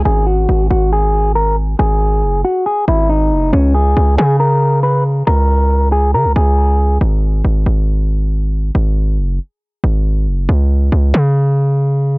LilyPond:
<<
  \new Staff \with { instrumentName = "Clean electric guitar" } { \time 4/4 \key cis \dorian \tempo 4 = 138 gis'8 fis'4 fis'8 gis'4 ais'8 r8 | gis'4. fis'8 gis'8 e'8 dis'4 | cis'8 gis'4 gis'8 ais'4 b'8 r8 | ais'4. gis'8 ais'8 gis'4. |
r1 | r1 | r1 | }
  \new Staff \with { instrumentName = "808-style bass" } { \clef bass \time 4/4 \key cis \dorian gis,,4 gis,,8 gis,,2~ gis,,8 | gis,,4 fis,,8 r4 gis,,4 fis,,8 | cis,4 cis,8 cis2~ cis8 | cis,2 cis16 cis,16 cis,4. |
gis,,4 gis,,8 gis,,2~ gis,,8 | gis,,4 fis,,8 r4 gis,,4 fis,,8 | cis,4 cis,8 cis2~ cis8 | }
>>